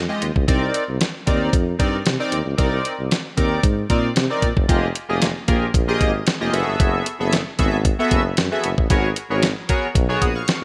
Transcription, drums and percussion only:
0.22 closed hi-hat
0.36 kick
0.48 kick, closed hi-hat
0.74 closed hi-hat
1.01 snare, closed hi-hat
1.27 kick, closed hi-hat
1.53 kick, closed hi-hat
1.80 kick, closed hi-hat
2.06 snare, closed hi-hat
2.32 closed hi-hat
2.58 kick, closed hi-hat
2.85 closed hi-hat
3.11 snare, closed hi-hat
3.38 kick, closed hi-hat
3.63 kick, closed hi-hat
3.90 kick, closed hi-hat
4.16 snare, closed hi-hat
4.42 kick, closed hi-hat
4.57 kick
4.69 kick, closed hi-hat
4.95 closed hi-hat
5.22 snare, closed hi-hat
5.48 kick, closed hi-hat
5.74 kick, closed hi-hat
6.01 kick, closed hi-hat
6.27 snare, closed hi-hat
6.54 closed hi-hat
6.80 kick, closed hi-hat
7.06 closed hi-hat
7.33 snare, closed hi-hat
7.59 kick, closed hi-hat
7.85 kick, closed hi-hat
8.11 kick, closed hi-hat
8.37 snare, closed hi-hat
8.64 closed hi-hat
8.78 kick
8.90 kick, closed hi-hat
9.16 closed hi-hat
9.43 snare, closed hi-hat
9.69 kick, closed hi-hat
9.95 kick, closed hi-hat
10.22 kick, closed hi-hat
10.48 snare, closed hi-hat

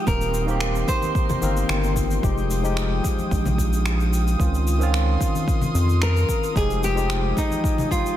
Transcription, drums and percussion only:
0.07 kick, shaker
0.21 shaker
0.34 shaker
0.48 shaker
0.60 finger snap, shaker
0.76 shaker
0.88 kick, shaker
1.03 high conga, shaker
1.15 kick, shaker
1.29 high conga, low conga, shaker
1.43 shaker
1.57 shaker
1.69 finger snap, shaker
1.84 shaker
1.96 kick, shaker
2.11 shaker
2.23 kick, shaker
2.38 shaker
2.51 shaker
2.65 shaker
2.77 finger snap, shaker
3.04 kick, shaker
3.18 high conga, shaker
3.31 kick, shaker
3.46 high conga, low conga, shaker
3.58 kick, shaker
3.73 shaker
3.86 finger snap, shaker
4.00 shaker
4.13 shaker
4.28 shaker
4.40 kick, shaker
4.54 shaker
4.67 shaker
4.81 shaker
4.94 finger snap, shaker
5.21 kick, shaker
5.35 high conga, shaker
5.48 kick, shaker
5.61 high conga, low conga, shaker
5.75 shaker
5.89 shaker
6.02 finger snap, shaker
6.17 shaker
6.29 kick, shaker
6.44 shaker
6.56 kick, shaker
6.71 shaker
6.84 shaker
6.98 shaker
7.10 finger snap, shaker
7.37 kick, shaker
7.51 high conga, shaker
7.64 kick, shaker
7.78 high conga, low conga, shaker
7.91 kick, shaker
8.06 shaker

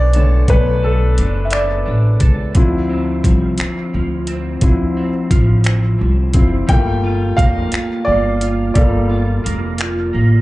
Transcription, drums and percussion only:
0.13 closed hi-hat
0.48 kick, closed hi-hat
1.18 closed hi-hat
1.50 finger snap, closed hi-hat
2.20 kick, closed hi-hat
2.55 kick, closed hi-hat
3.24 kick, closed hi-hat
3.58 finger snap, closed hi-hat
4.27 closed hi-hat
4.61 kick, closed hi-hat
5.31 kick, closed hi-hat
5.64 finger snap, closed hi-hat
6.34 kick, closed hi-hat
6.69 kick, closed hi-hat
7.38 kick, closed hi-hat
7.72 finger snap, closed hi-hat
8.41 closed hi-hat
8.75 kick, closed hi-hat
9.46 closed hi-hat
9.78 finger snap, closed hi-hat

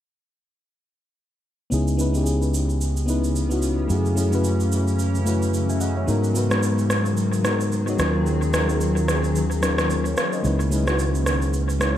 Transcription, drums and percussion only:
1.72 shaker
1.88 shaker
1.99 shaker
2.15 shaker
2.26 shaker
2.42 shaker
2.54 shaker
2.69 shaker
2.81 shaker
2.97 shaker
3.08 shaker
3.24 shaker
3.36 shaker
3.51 shaker
3.62 shaker
3.90 shaker
4.06 shaker
4.17 shaker
4.33 shaker
4.44 shaker
4.60 shaker
4.72 shaker
4.88 shaker
4.99 shaker
5.15 shaker
5.27 shaker
5.42 shaker
5.54 shaker
5.69 shaker
5.81 shaker
6.08 shaker
6.24 shaker
6.35 shaker
6.51 cross-stick, shaker
6.63 shaker
6.79 shaker
6.90 cross-stick, shaker
7.06 shaker
7.17 shaker
7.33 shaker
7.45 cross-stick, shaker
7.61 shaker
7.72 shaker
7.88 shaker
7.99 cross-stick, shaker
8.26 shaker
8.42 shaker
8.54 cross-stick, shaker
8.69 shaker
8.81 shaker
8.97 shaker
9.08 cross-stick, shaker
9.24 shaker
9.35 shaker
9.51 shaker
9.63 cross-stick, shaker
9.78 cross-stick, shaker
9.90 shaker
10.06 shaker
10.17 cross-stick, shaker
10.33 shaker
10.44 shaker
10.60 shaker
10.72 shaker
10.87 cross-stick, shaker
10.99 shaker
11.15 shaker
11.26 cross-stick, shaker
11.42 shaker
11.53 shaker
11.69 shaker
11.81 cross-stick, shaker

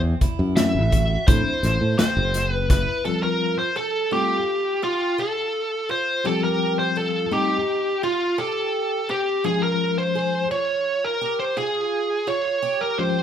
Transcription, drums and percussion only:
0.21 kick, closed hi-hat
0.57 snare, closed hi-hat
0.92 kick, closed hi-hat
1.28 kick, closed hi-hat
1.63 snare, closed hi-hat
1.99 snare, closed hi-hat
2.34 snare, closed hi-hat
2.70 kick, snare, closed hi-hat

